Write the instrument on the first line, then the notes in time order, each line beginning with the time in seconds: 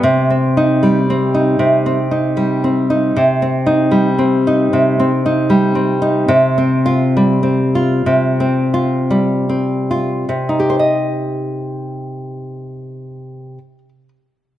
nylon-string guitar
0.03 C3
0.30 C4
0.57 D#4
0.83 G3
1.10 C4
1.34 D#4
1.59 C3
1.86 C4
2.11 D#4
2.37 G3
2.64 C4
2.90 D#4
3.16 C3
3.42 C4
3.66 D#4
3.91 G3
4.19 C4
4.47 D#4
4.73 C3
5.00 C4
5.26 D#4
5.50 G3
5.75 C4
6.02 D#4
6.28 C3
6.58 C4
6.86 F4
7.17 G3
7.43 C4
7.75 F4
8.06 C3
8.40 C4
8.74 F4
9.11 G3
9.49 C4
9.91 F4
10.29 C3
10.49 D#4
10.60 G4
10.70 C5
10.79 D#5